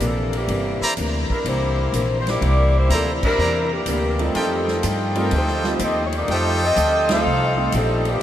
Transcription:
0.00 upright bass A#1, hollow-body jazz guitar C3 E3 A#3 D4, hi-hat pedal, ride
0.04 saxophone section F3 A#3 D4 A4
0.33 saxophone section E3, ride
0.37 saxophone section A#3 D4 G4
0.48 upright bass G1, hollow-body jazz guitar C3 E3 A#3 D4, ride
0.81 trumpet section E4 C5 D5 A#5, muted upright bass stroke
0.97 upright bass D2, hollow-body jazz guitar C3 E3 A#3 D4, hi-hat pedal, ride
1.30 saxophone section G3 D4 E4 A#4, muted upright bass stroke, kick
1.45 upright bass C2, hollow-body jazz guitar C3 E3 A#3 D4, saxophone section A#3 E4 G4 C5, ride
1.92 upright bass A#1, hollow-body jazz guitar C3 E3 A#3 D4, hi-hat pedal, ride
2.19 saxophone section C5
2.27 saxophone section A#3 E4 G4 D5, snare, ride
2.41 upright bass C2, hollow-body jazz guitar C3 E3 A#3 D4, ride
2.77 saxophone section A#3 E4 G4 C5
2.89 upright bass D2, hollow-body jazz guitar C3 E3 A#3 D4, saxophone section F3, trumpet section E4 C5 D5 A#5, hi-hat pedal, ride
2.93 saxophone section A#3 D4 A4
3.23 saxophone section G3 D4 E4 A#4, kick, crash
3.38 upright bass E2, hollow-body jazz guitar C3 E3 A#3 D4, trumpet section E4 C5 D5 A#5
3.72 saxophone section E3 A#3 D4 G4
3.86 upright bass D2, hollow-body jazz guitar C3 E3 A#3 D4, hi-hat pedal, ride
3.90 saxophone section E3 A#3 D4 G4
4.19 grand piano G3 A3 C4 D#4 F4, saxophone section C4 A4, ride
4.23 saxophone section G3 D#4
4.34 upright bass F2, hollow-body jazz guitar F3 A3 D#4 G4, trumpet section F4 A4 D#5 G5, ride
4.68 snare
4.83 upright bass G2, hollow-body jazz guitar F3 A3 D#4 G4, hi-hat pedal, ride
5.15 grand piano G3 A3 C4 D#4 F4, saxophone section G3 C4 D#4 A#4, ride
5.30 upright bass D2, hollow-body jazz guitar F3 A3 D#4 G4, ride
5.36 saxophone section A3 D#4 G4 C5
5.47 snare
5.64 grand piano G3 A3 C4 D#4 F4, snare
5.79 upright bass D#2, hollow-body jazz guitar F3 A3 D#4 G4, hi-hat pedal, ride
5.83 saxophone section C4 G4 A4 D#5
6.06 saxophone section C#5
6.12 ride
6.17 saxophone section A#3 D#4 G4 D5
6.28 upright bass F2, hollow-body jazz guitar F3 A3 D#4 G4, trumpet section F4 A4 D#5 G5, ride
6.32 saxophone section A3 D#4 G4 C5
6.64 saxophone section C4 G4 A4 D#5
6.76 upright bass D2, hollow-body jazz guitar F3 A3 D#4 G4, hi-hat pedal, ride
7.09 grand piano G3 A3 C4 D#4 F4, saxophone section D#4 C5, snare, ride
7.13 saxophone section A4 F5
7.25 upright bass C2, hollow-body jazz guitar F3 A3 D#4 G4
7.57 grand piano G3 A3 C4 D#4 G4
7.72 upright bass A#1, hollow-body jazz guitar F3 A3 D#4 G4, hi-hat pedal, ride
7.76 saxophone section G3 C4 D#4 A4
8.05 saxophone section E3 A#3 D4 G4, ride

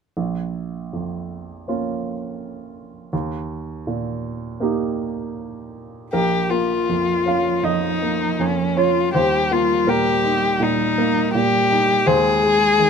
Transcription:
0.17 upright piano A#1
0.93 upright piano F2
1.68 upright piano A#3 C#4 F4
3.13 upright piano D#2
3.87 upright piano A#2
4.60 upright piano A#3 D#4 G4
6.12 upright piano A#1 A#4, cello F3, violin G4
6.50 upright piano A#3, violin F4
6.89 upright piano F2
7.25 upright piano C#4 F5
7.63 upright piano F2 D#5, violin D#4
8.02 upright piano A#3
8.39 upright piano F2, violin C#4
8.76 upright piano C#4 C#5, violin F4
9.14 upright piano D#2 C5, cello G3, violin G4
9.51 upright piano A#3, violin F4
9.87 upright piano A#2 A#4, violin G4
10.24 upright piano D#4
10.60 upright piano A#2, violin D#4
10.98 upright piano A#3
11.35 upright piano A#2, violin G4
11.70 upright piano D#4
12.06 upright piano D#2 C5, cello G#3, violin G#4
12.43 upright piano G#3
12.79 upright piano D#3

